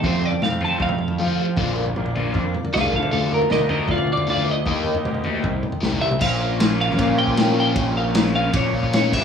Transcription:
Already playing: G5
0.02 F2 F3 A3 C4 F4 A4 C5 F5 C6, kick, floor tom
0.22 F3 A3 D5, floor tom
0.32 floor tom
0.42 F2 F3 A3 C4 F5, snare, mid tom
0.61 F3 A3 C4 F4 A5, floor tom
0.79 F2 F3 A3 C4 F5, kick, floor tom
0.89 mid tom
0.98 F3 A3, mid tom
1.08 floor tom
1.19 F3 A3 C4 F4
1.27 floor tom
1.40 F3 A3
1.57 A#1 D3 F3 A#3 D4 F4 A#4 D5 D6, kick, floor tom
1.76 F3 A#3, floor tom
1.86 floor tom
1.96 A#1 F3 A#3 D4, mid tom
2.06 floor tom
2.14 D3 F3 A#3 D4 F4, floor tom
2.33 F2 F3 A#3 D4, kick, floor tom
2.52 F3 A#3, floor tom, mid tom
2.65 floor tom
2.73 C2 D3 F3 A#3 D4 F4 G#4 F5, snare
2.83 floor tom
2.90 D2 F3 A3 D4 A4 E5, kick
2.95 A4 F5
3.03 mid tom
3.09 D3 F3 A3 D4 A4 F5, floor tom
3.13 D2 F4
3.30 F3 A3 D#5, floor tom
3.34 A#4
3.42 floor tom
3.48 D2 F3 A3 D4 A#4 D#5, snare, mid tom
3.68 D3 F3 A3 D4 F4 A#4 D#5, floor tom
3.88 D2 F3 A3 D4 F4 D5, kick, floor tom
3.98 mid tom
4.06 F3 A3, mid tom
4.12 F4 D5
4.17 floor tom
4.27 D2 D3 F3 A3 D4 F4 D5
4.37 floor tom
4.47 F3 A3
4.51 D#5
4.65 D#2 D#3 A#3 D#4 G4 A#4 D#5 G5 D#6, kick, floor tom
4.84 A#3, floor tom
4.88 D#4
4.95 floor tom
5.05 D2 A#3 D#4 G4, mid tom
5.14 floor tom
5.24 D#3 A#3 D#4 G4, floor tom
5.43 C2 G3 C4 E4 A4 E5 C6, kick, floor tom
5.63 G3 C4, floor tom, mid tom
5.72 floor tom
5.81 C2 E3 G3 C4 G4, snare
5.92 floor tom
6.02 C2 G3 C4 E5
6.11 mid tom
6.19 A#1 A#2 F3 A#3 F4 A#4 C#5 F5 C#6, kick, crash
6.23 C#4 F4
6.41 A#3
6.60 F3, snare, ride bell
6.80 C#4 F5
6.90 snare
6.98 A#2 A#3, kick, ride bell
7.08 kick
7.18 F4 G5
7.27 kick
7.37 C#4, snare, ride bell
7.57 F3 G5
7.76 A#1 A#2, kick, ride bell
7.97 A#3 F5
8.15 F3, snare, ride bell
8.26 snare
8.36 C#4 F5
8.53 A#2 A#3 C#5, kick, ride bell
8.73 F4, kick
8.83 kick
8.93 C#4 C#5, snare, ride bell
9.10 G1 G2 A#3 D4 E5 G5 D6, kick, crash
9.15 G4

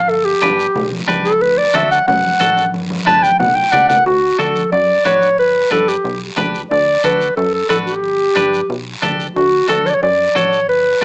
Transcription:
Already playing: A1 F5
0.09 G1 A4, long guiro
0.25 G4, high conga
0.42 G1 D4 G4 B4, high conga, short guiro
0.59 short guiro
0.75 B1, high conga, low conga, long guiro
0.92 high conga
1.08 C#2 D4 G4 B4, high conga, short guiro
1.25 A4, short guiro
1.41 D2 B4, long guiro
1.58 D5, high conga
1.74 D2 D4 F#4 A4 E5, high conga, short guiro
1.91 F#5, short guiro
2.08 F#2 F#5, high conga, low conga, long guiro
2.24 high conga
2.40 A1 D4 F#4 A4, high conga, short guiro
2.57 high conga, short guiro
2.74 G1, high conga, long guiro
2.90 high conga
3.06 G1 D4 G4 B4 A5, low conga, short guiro
3.23 G5, high conga, short guiro
3.40 B1 F#5, low conga, long guiro
3.55 G5
3.72 C#2 D4 G4 D5 F#5, low conga, short guiro
3.89 F#5, low conga, short guiro
4.06 D2 F#4, long guiro
4.39 D2 D4 F#4 A4, high conga, short guiro
4.56 high conga, short guiro
4.72 F#2 D5, long guiro
5.05 A1 D4 F#4 B4 C#5, high conga, short guiro
5.22 short guiro
5.38 G1 B4, long guiro
5.71 G1 D4 G4 A4 B4, high conga
5.88 G4, short guiro
6.04 B1, long guiro
6.37 D2 D4 G4 B4, high conga, low conga, short guiro
6.55 short guiro
6.71 D2 D5, long guiro
7.04 D2 D4 F#4 A4 B4, high conga, short guiro
7.21 short guiro
7.37 F#2 A4, long guiro
7.54 A4
7.69 A1 D4 F#4 A4 B4, high conga, short guiro
7.87 G4, short guiro
8.03 G1, long guiro
8.35 G1 D4 G4 B4, high conga, short guiro
8.53 short guiro
8.70 B1, long guiro
9.02 D2 D4 G4 A4, high conga, low conga, short guiro
9.20 short guiro
9.36 D2 F#4, long guiro
9.68 D2 D4 F#4 A4, high conga, short guiro
9.86 C#5, high conga, short guiro
9.90 D5
9.94 C#5
10.02 F#2 D5, long guiro
10.35 A1 D4 F#4 A4 C#5, high conga, short guiro
10.53 short guiro
10.69 G1 B4, long guiro
11.01 D4

